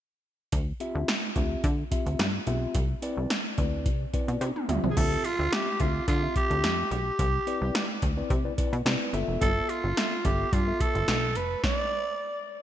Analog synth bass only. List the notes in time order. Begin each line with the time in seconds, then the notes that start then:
0.52 D2
0.95 D2
1.36 D2
1.64 D3
2.06 D2
2.19 G2
2.47 B1
2.75 C2
3.17 C2
3.58 D2
3.86 C3
4.28 B2
4.41 C3
4.69 D2
4.84 C2
4.97 D2
5.39 D2
5.80 D2
6.08 D3
6.50 D2
6.63 F2
6.91 B1
7.19 C2
7.61 C2
8.02 D2
8.30 C3
8.73 B2
8.86 C3
9.13 G1
9.28 F1
9.41 G1
9.84 G1
10.25 G1
10.52 G2
10.95 G1
11.08 B1
11.36 F1